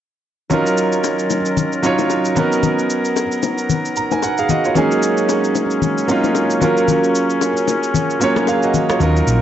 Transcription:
0.50 2.35 D#3 medium
0.50 1.36 F#3 medium
0.50 2.35 F#3 medium
0.50 2.35 C#4 medium
0.50 1.37 C#4 medium
0.50 1.37 D#4 medium
0.50 2.35 F4 medium
0.50 1.38 F4 medium
0.50 4.72 A#4 medium
0.50 1.38 A#4 medium
0.50 low conga medium
0.50 shaker medium
0.66 shaker soft
0.77 shaker loud
0.92 shaker medium
1.04 high bongo medium
1.04 shaker medium
1.19 shaker medium
1.30 low bongo medium
1.30 shaker medium
1.45 shaker medium
1.57 low conga medium
1.57 shaker medium
1.73 shaker soft
1.82 2.34 F#3 medium
1.82 2.36 C#4 medium
1.82 2.37 D#4 medium
1.82 2.37 F4 medium
1.82 2.38 C#5 medium
1.82 shaker medium
1.99 low bongo medium
1.99 shaker soft
2.10 high bongo medium
2.10 shaker medium
2.25 shaker soft
2.35 3.22 F#3 medium
2.35 3.22 B3 medium
2.35 4.73 B3 medium
2.35 3.23 C#4 medium
2.35 4.73 D#4 medium
2.35 3.23 D#4 medium
2.35 3.24 A#4 medium
2.35 low conga medium
2.35 shaker medium
2.52 shaker soft
2.63 low conga medium
2.63 shaker medium
2.79 shaker medium
2.90 shaker loud
3.05 shaker medium
3.16 high bongo medium
3.16 shaker medium
3.32 shaker medium
3.43 low bongo medium
3.43 shaker medium
3.58 shaker medium
3.70 low conga medium
3.70 shaker medium
3.85 shaker soft
3.96 4.11 A#5 medium
3.96 shaker medium
4.11 4.22 G#5 medium
4.11 low bongo medium
4.11 shaker soft
4.22 4.48 F#5 medium
4.22 high bongo medium
4.22 shaker medium
4.38 4.49 G#4 medium
4.38 4.49 F5 medium
4.38 shaker soft
4.49 4.65 F#4 medium
4.49 4.64 D#5 medium
4.49 4.74 F#5 medium
4.49 low conga medium
4.49 shaker medium
4.65 4.90 F4 medium
4.65 4.90 C#5 medium
4.65 shaker soft
4.74 5.61 F#3 medium
4.74 6.60 F#3 medium
4.74 6.60 G#3 medium
4.74 5.61 A#3 medium
4.74 8.83 C#4 medium
4.74 5.62 C#4 medium
4.74 5.62 D#4 medium
4.74 5.63 G#4 medium
4.74 low conga medium
4.74 shaker medium
4.92 shaker soft
5.03 shaker loud
5.17 shaker medium
5.29 high bongo medium
5.29 shaker medium
5.44 shaker soft
5.55 low bongo medium
5.55 shaker medium
5.71 shaker medium
5.82 low conga medium
5.82 shaker medium
5.98 shaker soft
6.07 6.59 F#3 medium
6.07 6.60 A#3 medium
6.07 6.61 C#4 medium
6.07 6.62 D#4 medium
6.07 6.62 F4 medium
6.07 shaker medium
6.24 low bongo medium
6.24 shaker soft
6.35 high bongo medium
6.35 shaker medium
6.50 shaker soft
6.60 7.47 F#3 medium
6.60 8.83 F#3 medium
6.60 7.47 A#3 medium
6.60 7.48 C#4 medium
6.60 9.42 F4 medium
6.60 7.48 F4 medium
6.60 8.83 G#4 medium
6.60 8.83 A#4 medium
6.60 7.49 A#4 medium
6.60 low conga medium
6.60 shaker medium
6.77 shaker medium
6.88 low conga medium
6.88 shaker medium
7.04 shaker soft
7.15 shaker loud
7.30 shaker medium
7.41 high bongo medium
7.41 shaker medium
7.57 shaker medium
7.68 low bongo medium
7.68 shaker medium
7.83 shaker medium
7.94 low conga medium
7.94 shaker medium
8.10 shaker soft
8.20 8.86 F#3 medium
8.20 8.86 A#3 medium
8.20 8.87 C#4 medium
8.20 8.48 F4 medium
8.20 8.49 C#5 medium
8.20 shaker medium
8.36 cross-stick medium
8.36 low bongo medium
8.36 shaker soft
8.47 8.63 G#4 medium
8.47 8.62 F5 medium
8.47 high bongo medium
8.47 shaker medium
8.63 8.89 F#4 medium
8.63 8.88 D#5 medium
8.63 shaker medium
8.74 low conga medium
8.74 shaker medium
8.90 9.00 F4 medium
8.90 9.15 C#5 medium
8.90 cross-stick medium
8.90 shaker medium
8.99 9.21 D#2 medium
8.99 9.42 D#3 medium
8.99 9.42 F#3 medium
8.99 9.42 C#4 medium
8.99 9.42 D#4 medium
8.99 9.42 F4 medium
8.99 9.42 A#4 medium
8.99 low conga medium
8.99 shaker medium
9.16 shaker soft
9.27 9.42 A#1 loud
9.27 shaker loud

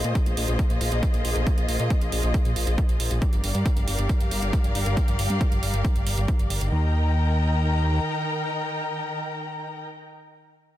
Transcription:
0.00 3.18 A#3 medium
0.00 3.18 F4 medium
0.00 3.18 G#4 medium
0.00 3.18 C5 medium
0.00 3.18 D#5 medium
0.04 0.14 A#2 medium
0.04 closed hi-hat soft
0.15 kick loud
0.15 closed hi-hat medium
0.26 0.35 A#1 medium
0.26 closed hi-hat soft
0.37 0.46 A#1 loud
0.37 open hi-hat medium
0.48 0.57 A#1 medium
0.48 closed hi-hat soft
0.59 kick loud
0.59 closed hi-hat medium
0.70 0.79 A#2 medium
0.70 closed hi-hat soft
0.81 0.90 A#1 loud
0.81 open hi-hat medium
0.92 1.01 A#1 medium
0.92 closed hi-hat soft
1.03 kick loud
1.03 closed hi-hat medium
1.14 1.23 A#1 medium
1.14 closed hi-hat soft
1.25 1.34 A#1 medium
1.25 open hi-hat medium
1.36 1.45 A#1 medium
1.36 closed hi-hat soft
1.47 kick loud
1.47 closed hi-hat medium
1.58 1.67 A#1 medium
1.58 closed hi-hat soft
1.69 1.78 A#1 loud
1.69 open hi-hat medium
1.79 1.89 A#2 medium
1.79 closed hi-hat soft
1.90 kick loud
1.90 closed hi-hat medium
2.01 2.11 A#1 medium
2.01 closed hi-hat soft
2.12 2.22 A#1 loud
2.12 open hi-hat medium
2.23 2.33 A#1 medium
2.23 closed hi-hat soft
2.34 kick loud
2.34 closed hi-hat medium
2.45 2.54 A#2 medium
2.45 closed hi-hat soft
2.56 2.65 A#1 medium
2.56 open hi-hat medium
2.67 2.76 A#1 medium
2.67 closed hi-hat soft
2.78 kick loud
2.78 closed hi-hat medium
2.89 2.98 A#1 medium
2.89 closed hi-hat soft
3.00 3.09 A#1 medium
3.00 open hi-hat medium
3.11 3.20 A#1 medium
3.11 closed hi-hat soft
3.22 6.69 G3 medium
3.22 6.69 G4 medium
3.22 6.69 A#4 medium
3.22 6.69 D5 medium
3.22 6.69 F5 medium
3.22 kick loud
3.22 closed hi-hat medium
3.33 3.42 G1 medium
3.33 closed hi-hat medium
3.44 3.53 G1 loud
3.44 open hi-hat medium
3.55 3.64 G2 medium
3.55 closed hi-hat medium
3.66 kick loud
3.66 closed hi-hat medium
3.77 3.86 G1 medium
3.77 closed hi-hat soft
3.88 3.97 G1 loud
3.88 open hi-hat medium
3.98 4.08 G1 medium
3.98 closed hi-hat medium
4.09 kick loud
4.09 closed hi-hat medium
4.20 4.30 G2 medium
4.20 closed hi-hat soft
4.31 4.41 G1 medium
4.31 open hi-hat medium
4.42 4.51 G1 medium
4.42 closed hi-hat soft
4.53 kick loud
4.53 closed hi-hat medium
4.64 4.73 G1 medium
4.64 closed hi-hat soft
4.75 4.84 G1 loud
4.75 open hi-hat medium
4.86 4.95 G1 medium
4.86 closed hi-hat medium
4.97 kick loud
4.97 closed hi-hat medium
5.08 5.17 G1 medium
5.08 closed hi-hat medium
5.19 5.28 G1 loud
5.19 open hi-hat medium
5.30 5.39 G2 medium
5.30 closed hi-hat medium
5.41 kick loud
5.41 closed hi-hat medium
5.52 5.61 G1 medium
5.52 closed hi-hat soft
5.63 5.72 G1 loud
5.63 open hi-hat medium
5.74 5.83 G1 medium
5.74 closed hi-hat medium
5.85 kick loud
5.85 closed hi-hat medium
5.95 6.05 G1 medium
5.95 closed hi-hat medium
6.06 6.16 G1 medium
6.06 open hi-hat medium
6.17 6.27 G1 medium
6.17 closed hi-hat soft
6.28 kick loud
6.28 closed hi-hat medium
6.39 6.49 G1 medium
6.39 closed hi-hat soft
6.50 6.59 G1 medium
6.50 open hi-hat medium
6.61 6.70 G1 medium
6.61 closed hi-hat soft
6.72 7.99 D#2 medium
6.72 9.81 D#3 medium
6.72 9.81 D#4 medium
6.72 9.81 A#4 medium
6.72 9.81 G5 medium
6.72 9.81 A#5 medium

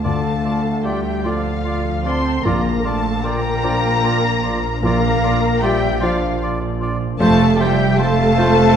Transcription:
0.00 2.41 D2 medium
0.00 0.43 A3 soft
0.00 0.23 D4 soft
0.00 0.63 F4 soft
0.00 0.83 A4 medium
0.00 1.43 A5 soft
0.04 2.41 D2 medium
0.04 2.47 D3 medium
0.04 2.41 D3 medium
0.04 0.83 A3 medium
0.04 0.84 A3 medium
0.04 0.20 F4 medium
0.04 0.83 A4 medium
0.04 0.20 D5 medium
0.04 0.87 F5 medium
0.04 0.84 A5 medium
0.24 2.83 D4 medium
0.44 2.24 A3 medium
0.44 0.61 F4 medium
0.44 0.60 D5 medium
0.64 1.03 F4 medium
0.84 1.25 G3 medium
0.84 1.26 G3 medium
0.84 1.01 F4 medium
0.84 1.25 G4 medium
0.84 1.84 A4 medium
0.84 1.01 D5 medium
0.84 1.28 E5 medium
0.84 1.25 G5 medium
1.05 2.04 F4 medium
1.25 2.05 F3 medium
1.25 2.06 F3 medium
1.25 2.41 A3 soft
1.25 1.41 F4 medium
1.25 2.05 F4 medium
1.25 2.41 F4 soft
1.25 2.41 A4 medium
1.25 1.42 D5 medium
1.25 2.06 D5 medium
1.25 2.06 F5 medium
1.25 2.06 F5 loud
1.44 2.48 A5 medium
1.65 1.81 F4 medium
1.65 1.83 D5 medium
1.85 2.48 A4 medium
2.04 2.45 C4 medium
2.04 2.21 F4 medium
2.04 3.03 F4 medium
2.04 2.45 C5 medium
2.04 2.22 D5 medium
2.04 2.44 A5 medium
2.04 2.44 C6 medium
2.04 2.46 C6 medium
2.25 2.48 A3 medium
2.45 4.79 A#1 medium
2.45 7.17 A#1 medium
2.45 4.82 A#2 medium
2.45 4.79 A#2 medium
2.45 2.84 A#3 medium
2.45 2.61 F4 medium
2.45 2.84 A#4 medium
2.45 2.62 D5 medium
2.45 2.84 F5 medium
2.45 2.85 A#5 medium
2.65 5.01 F3 medium
2.83 3.23 A3 medium
2.83 3.24 A3 medium
2.83 4.62 D4 medium
2.83 3.01 F4 medium
2.83 3.23 A4 medium
2.83 3.01 D5 medium
2.83 3.24 F5 medium
2.83 3.24 A5 medium
2.83 3.25 A5 loud
3.04 4.42 F4 medium
3.23 4.67 A#3 loud
3.23 4.82 A#3 medium
3.23 3.40 F4 medium
3.23 4.83 A#4 loud
3.23 5.62 C5 medium
3.23 3.41 D5 medium
3.23 4.55 G5 loud
3.23 4.82 A#5 loud
3.43 4.22 D5 medium
3.63 4.79 D4 medium
3.63 3.80 F4 medium
3.63 4.79 F4 medium
3.63 4.79 C5 medium
3.63 3.80 D5 medium
3.83 6.21 C6 medium
4.03 4.19 F4 medium
4.03 4.20 D5 medium
4.24 5.82 D5 medium
4.43 4.59 F4 medium
4.43 5.42 F4 medium
4.43 4.60 D5 medium
4.63 5.22 D4 medium
4.82 7.17 A#1 medium
4.82 7.24 A#2 medium
4.82 7.17 A#2 medium
4.82 5.61 A#3 loud
4.82 5.62 A#3 loud
4.82 5.00 F4 medium
4.82 5.61 A#4 loud
4.82 5.00 D5 medium
4.82 5.63 F5 loud
4.82 5.61 A#5 loud
5.03 8.76 F3 medium
5.23 7.00 D4 medium
5.23 5.40 F4 medium
5.23 5.39 D5 medium
5.43 6.80 F4 medium
5.62 6.02 G3 medium
5.62 5.79 F4 medium
5.62 6.02 G4 loud
5.62 7.97 C5 medium
5.62 5.80 D5 medium
5.62 6.03 E5 loud
5.62 6.02 G5 loud
5.62 6.02 G5 medium
5.83 6.60 D5 medium
6.01 6.41 F3 medium
6.01 7.17 D4 medium
6.01 6.17 F4 medium
6.01 6.42 F4 medium
6.01 7.17 F4 medium
6.01 7.17 C5 medium
6.01 6.41 D5 medium
6.01 6.19 D5 medium
6.01 6.41 F5 medium
6.01 6.42 F5 loud
6.22 8.55 C6 medium
6.42 6.58 F4 medium
6.42 6.59 D5 medium
6.62 7.24 D5 medium
6.81 6.97 F4 medium
6.81 7.78 F4 medium
6.81 6.98 D5 medium
7.01 7.24 D4 medium
7.19 8.76 F1 loud
7.19 8.76 F1 medium
7.19 8.76 F2 medium
7.19 7.56 A3 loud
7.19 7.57 A3 loud
7.19 7.37 F4 medium
7.19 7.57 A4 loud
7.19 7.37 C5 loud
7.19 7.61 F5 loud
7.19 7.57 A5 loud
7.40 8.76 C3 medium
7.59 7.98 G3 loud
7.59 7.99 G3 loud
7.59 8.76 C4 medium
7.59 7.76 F4 medium
7.59 7.99 G4 loud
7.59 7.76 C5 medium
7.59 7.99 E5 loud
7.59 7.99 G5 loud
7.59 8.00 G5 loud
7.79 8.16 F4 medium
7.97 8.76 A3 loud
7.97 8.15 F4 medium
7.97 8.76 A4 loud
7.97 8.76 C5 medium
7.97 8.14 C5 medium
7.97 8.76 F5 loud
7.97 8.76 A5 loud
8.18 8.76 F4 medium
8.37 8.76 C4 medium
8.37 8.54 F4 medium
8.37 8.76 F4 medium
8.37 8.54 C5 medium
8.37 8.76 C5 medium
8.37 8.75 F5 medium
8.56 8.76 C6 medium

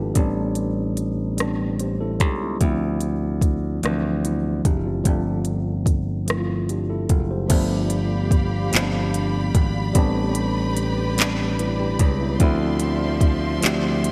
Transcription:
0.00 0.12 G#1 medium
0.00 0.18 D4 soft
0.00 0.17 E4 medium
0.00 0.17 F4 medium
0.00 0.34 G4 soft
0.00 0.18 A4 medium
0.00 0.17 B4 medium
0.14 2.20 A1 medium
0.14 0.91 G3 medium
0.14 0.92 B3 medium
0.14 0.93 C4 medium
0.14 kick medium
0.14 closed hi-hat medium
0.19 0.94 D4 medium
0.55 closed hi-hat soft
0.97 closed hi-hat soft
1.37 2.14 G3 medium
1.37 1.79 B3 medium
1.37 1.80 C4 medium
1.37 cross-stick medium
1.37 closed hi-hat medium
1.42 1.81 D4 medium
1.80 1.99 G4 soft
1.80 1.99 C5 medium
1.80 closed hi-hat soft
2.01 2.20 E4 medium
2.01 2.19 A4 medium
2.20 2.57 C#2 medium
2.20 2.40 D4 soft
2.20 2.40 G4 medium
2.20 kick medium
2.20 closed hi-hat soft
2.42 2.80 B3 soft
2.42 2.63 E4 soft
2.60 3.79 D2 medium
2.60 3.36 F3 medium
2.60 3.37 A3 medium
2.60 3.38 C4 medium
2.60 kick medium
2.60 closed hi-hat medium
2.65 3.39 E4 medium
3.01 closed hi-hat soft
3.41 kick medium
3.41 closed hi-hat soft
3.82 4.61 D2 medium
3.82 3.89 E3 soft
3.82 4.60 A3 medium
3.82 4.25 C4 medium
3.82 cross-stick medium
3.82 closed hi-hat medium
3.86 4.62 F3 medium
3.86 4.25 D4 medium
4.25 4.63 B3 soft
4.25 4.63 E4 medium
4.25 closed hi-hat soft
4.65 5.02 F#1 medium
4.65 4.85 D4 medium
4.65 4.85 G4 medium
4.65 kick medium
4.65 closed hi-hat soft
4.86 5.06 C4 soft
4.86 5.24 F4 medium
5.04 7.06 G1 medium
5.04 5.81 F3 medium
5.04 5.82 A3 medium
5.04 5.83 C4 medium
5.04 kick medium
5.04 closed hi-hat medium
5.09 5.84 D4 medium
5.45 closed hi-hat soft
5.86 kick medium
5.86 closed hi-hat soft
6.26 7.04 F3 medium
6.26 7.04 A3 medium
6.26 7.05 C4 medium
6.26 cross-stick loud
6.26 closed hi-hat medium
6.31 6.36 E4 medium
6.38 6.74 F4 medium
6.69 6.89 D4 soft
6.69 6.89 G4 soft
6.69 closed hi-hat soft
6.90 7.28 E4 medium
6.90 7.28 A4 medium
7.09 7.47 F#1 medium
7.09 kick medium
7.09 closed hi-hat medium
7.31 7.69 G4 soft
7.31 7.69 C5 medium
7.48 8.69 G1 loud
7.48 8.26 F3 medium
7.48 8.26 A3 medium
7.48 8.27 B3 medium
7.48 9.93 G4 medium
7.48 14.12 D5 medium
7.48 9.93 F5 medium
7.48 12.36 B5 medium
7.48 kick loud
7.48 closed hi-hat medium
7.48 crash medium
7.53 8.28 D4 medium
7.90 closed hi-hat medium
8.31 kick medium
8.31 closed hi-hat soft
8.71 9.51 G1 medium
8.71 9.48 F3 medium
8.71 9.49 A3 medium
8.71 9.50 B3 medium
8.71 closed hi-hat medium
8.75 8.81 C4 medium
8.75 clap loud
8.82 9.54 D4 medium
9.14 closed hi-hat soft
9.55 9.92 G#1 medium
9.55 kick loud
9.55 closed hi-hat medium
9.93 11.95 A1 medium
9.93 10.71 G3 medium
9.93 10.71 B3 medium
9.93 10.72 C4 medium
9.93 12.38 G4 medium
9.93 12.37 B4 medium
9.93 kick loud
9.93 closed hi-hat medium
9.98 10.73 D4 loud
10.35 closed hi-hat medium
10.77 closed hi-hat soft
11.16 11.93 G3 medium
11.16 11.58 B3 medium
11.16 11.59 C4 medium
11.16 closed hi-hat medium
11.20 11.60 D4 medium
11.20 clap loud
11.59 11.79 E4 medium
11.59 11.78 B4 medium
11.59 closed hi-hat soft
11.80 12.18 D4 medium
11.80 12.18 G4 medium
11.99 12.36 C#2 medium
11.99 kick medium
11.99 closed hi-hat medium
12.21 12.59 B3 medium
12.21 12.42 E4 medium
12.39 13.59 D2 loud
12.39 13.16 F3 medium
12.39 14.12 F3 medium
12.39 13.17 A3 medium
12.39 13.17 C4 medium
12.39 14.12 E5 medium
12.39 14.12 C6 medium
12.39 kick medium
12.39 closed hi-hat medium
12.44 13.18 E4 loud
12.80 closed hi-hat medium
13.21 kick medium
13.21 closed hi-hat soft
13.61 14.12 D2 medium
13.61 14.12 F3 medium
13.61 14.12 A3 medium
13.61 14.12 C4 medium
13.61 clap loud
13.61 closed hi-hat medium
13.66 14.12 G4 medium
14.04 closed hi-hat medium

